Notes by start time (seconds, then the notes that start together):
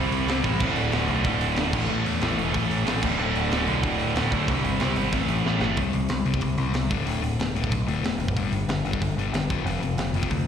Already playing: C3 G3 C4
0.11 C2, open hi-hat
0.26 C2 C3 G3, snare, open hi-hat
0.31 C4
0.44 A1 C3 G3 C4, kick, open hi-hat
0.60 D1 D2 A2 D3, kick, crash
0.76 D1, open hi-hat
0.92 D1 D2, snare, open hi-hat
0.96 A2 D3
1.08 B1 D2 A2 D3, open hi-hat
1.24 D1 D2 A2 D3, kick, open hi-hat
1.41 D1, open hi-hat
1.56 D1 D2 A2 D3, snare, open hi-hat
1.73 A1 A2 E3 A3, kick, crash
1.89 A1 A2 E3 A3
2.06 E2, open hi-hat
2.21 A1 A2 E3 A3, snare, open hi-hat
2.38 E1 A2 E3 A3, open hi-hat
2.53 A1 A2 E3 A3, kick, open hi-hat
2.69 A1, open hi-hat
2.86 A1 A2 E3 A3, snare, open hi-hat
3.02 D1 D2 A2 D3, kick, crash
3.19 D1 D2 A2 D3
3.35 D1, open hi-hat
3.51 D1 D2 A2 D3, snare, open hi-hat
3.67 B1 D2 A2 D3, open hi-hat
3.83 D1 D2 A2 D3, kick, open hi-hat
4.00 D1, open hi-hat
4.16 D1 D2 A2 D3, snare, open hi-hat
4.31 D2 A2 D3, kick, open hi-hat
4.48 C2 C3 G3 C4, kick, open hi-hat
4.64 G1, open hi-hat
4.80 C2 C3 G3 C4, snare, open hi-hat
4.96 G#1 C3 G3 C4, open hi-hat
5.13 A1 A2 E3 A3, kick, open hi-hat
5.28 A1, open hi-hat
5.44 A1 A2 E3 A3, snare
5.61 G1 A2 E3 A3, snare
5.77 C2 C3 G3 C4, kick, open hi-hat
5.93 C2 C3 G3, open hi-hat
6.09 C2 C3 G3, snare, open hi-hat
6.25 C2 C3 G3 C4, open hi-hat
6.34 kick
6.41 C2 C3 G3, kick, open hi-hat
6.58 C2 C3 G3 C4, open hi-hat
6.74 C2 C3 G3, snare, open hi-hat
6.89 D1 D2 A2 D3, kick, open hi-hat
7.05 D1 D2 A2 D3, open hi-hat
7.22 D1 D2 A2, open hi-hat
7.39 D1 D2 A2, snare, open hi-hat
7.55 D1 D2 A2 D3, open hi-hat
7.64 kick
7.72 B1 D2 A2, kick, open hi-hat
7.87 D1 D2 A2 D3, open hi-hat
8.03 D1 D2 A2, snare, open hi-hat
8.19 F#1 D2 A2, open hi-hat
8.28 kick
8.36 G1 G2 D3 G3, kick, open hi-hat
8.51 G1 G2 D3, open hi-hat
8.68 G1 G2 D3, snare, open hi-hat
8.84 G1 G2 D3 G3, open hi-hat
8.93 kick
9.01 G1 G2 D3, kick, open hi-hat
9.17 G1 G2 D3 G3, open hi-hat
9.32 G1 G2 D3, snare, open hi-hat
9.50 F1 F2 C3 F3, kick, open hi-hat
9.65 F1 F2 C3 F3, open hi-hat
9.81 F1 F2 C3, open hi-hat
9.97 F1 F2 C3, snare, open hi-hat
10.14 F1 F2 C3 F3, open hi-hat
10.23 kick
10.30 D2 F2 C3, kick, open hi-hat